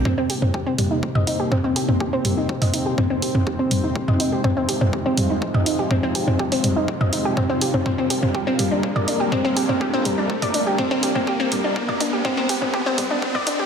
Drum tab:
HH |--o---o---o---o-|--o--oo---o---o-|--o---o---o---o-|--o--oo---o---o-|
T2 |o--o--o--o--o--o|--o--o--o--o--o-|-o--o--o--o--o--|o--o--o--o--o--o|
BD |o---o---o---o---|o---o---o---o---|o---o---o---o---|o---o---o---o---|

HH |--o---o---o---o-|--o--oo---o---o-|--o---o---o---o-|
T2 |o--o--o--o--o--o|--o--o--o--o--o-|-o--o--o--o--o--|
BD |o---o---o---o---|o---o---o---o---|o-o-o-o-o-o-o-o-|